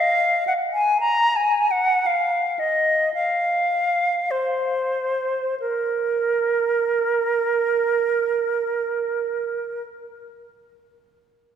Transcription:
Already playing: F5
0.47 F#5
0.73 G#5
1.00 A#5
1.36 G#5
1.71 F#5
2.06 F5
2.59 D#5
3.14 F5
4.31 C5
5.60 A#4

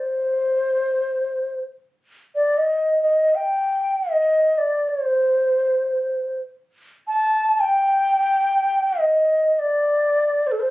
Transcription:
Already playing: C5
2.35 D5
2.57 D#5
3.02 D#5
3.35 G5
4.11 D#5
4.58 D5
4.89 C5
7.07 A5
7.60 G5
8.99 D#5
9.59 D5
10.47 C5
10.51 A4
10.61 C5

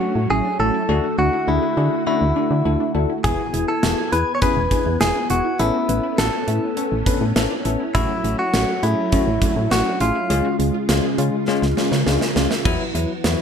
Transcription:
Already playing: F#3 A3 C#4 F#4
0.01 A3 C#4 D4 F#4
0.15 A2
0.30 A1 A3 C#4 E4 F#4 G#4
0.45 D4
0.59 A1 A3 C#4 E4 F#4 A4
0.74 E4
0.89 D2 D3 A3 D4 F#4 G#4
1.04 F#4
1.18 D2 A3 D4 E4 F#4
1.33 E4
1.48 D2 A3 D4 E4 F#4 G#4
1.63 G#4
1.77 D3 A3 D4 F#4 G#4
2.07 A3 C#4 D4 E4 F#4
2.21 D2
2.36 A3 D4 F#4
2.51 D3
2.65 D2 A3 D4 E4 A4
2.80 D4
2.95 D2 A3 D4 E4 A4
3.10 E4
3.24 E1 B3 E4 G#4 G#5, kick, closed hi-hat
3.39 F#4
3.54 E1 B3 E4 G#4, closed hi-hat
3.68 E4 A4
3.83 E1 B3 E4 F#4 G#4, snare, closed hi-hat
3.98 G#4
4.12 E2 B3 E4 G#4 B4, closed hi-hat
4.35 C#5
4.42 B3 C#4 E4 G#4 B4, kick, closed hi-hat
4.57 E1
4.71 B3 D4 E4 G#4, kick, closed hi-hat
4.86 E2
5.01 E1 B3 E4 G#4, snare, closed hi-hat
5.15 D4
5.30 E1 B3 E4 F#4 G#4, closed hi-hat
5.45 E4
5.59 A1 A3 B3 C#4 E4 G#4 A4, closed hi-hat
5.74 F#4
5.89 A1 B3 C#4 E4 B4, closed hi-hat
6.03 E4
6.18 A1 B3 C#4 F#4 A4, snare, closed hi-hat
6.33 G#4
6.48 A2 B3 C#4 E4, closed hi-hat
6.77 B3 C#4 A4, closed hi-hat
6.92 A1
7.06 B3 C#4 D4 B4, kick, closed hi-hat
7.21 A2
7.36 A1 B3 C#4 E4 A4, snare, closed hi-hat
7.51 D4
7.65 A1 B3 C#4 E4 A4, closed hi-hat
7.80 E4
7.95 A1 F#3 A3 C#4 E4 F#4 G#4, kick, closed hi-hat
8.09 F#4
8.24 A1 A3 C#4 E4 F#4, closed hi-hat
8.39 E4 F#4
8.54 A1 A3 C#4 F#4, snare, closed hi-hat
8.68 A4
8.83 A2 A3 C#4 E4 F#4 G#4, closed hi-hat
9.12 A3 C#4 F#4, kick, closed hi-hat
9.27 A1
9.42 A3 C#4 D4 F#4, kick, closed hi-hat
9.56 A2
9.71 A1 A3 C#4 E4 F#4, snare, closed hi-hat
9.86 D4
10.00 A1 A3 C#4 E4 F4 G#4, closed hi-hat
10.15 E4
10.30 C#2 C#3 G#3 C#4 F4 G#4, closed hi-hat
10.45 F#4
10.59 C#2 G#3 C#4 F4, closed hi-hat
10.74 F4
10.89 C#2 G#3 C#4 F4 F#4, snare, closed hi-hat
11.04 G#4
11.18 C#3 G#3 C#4 F4, closed hi-hat
11.48 G#3 C#4 F4, snare
11.62 C#2, snare
11.77 G#3 C#4 F4, snare
11.92 C#3, snare
12.06 C#2 G#3 C#4 D4 F4, snare
12.21 C#4, snare
12.36 C#2 G#3 C#4 F4, snare
12.51 F4, snare
12.65 E2 E3 F#3 B3 E4 F#4, kick, crash
12.95 E2 F#3 B3 E4, closed hi-hat
13.24 E2 F#3 B3 E4, snare, closed hi-hat

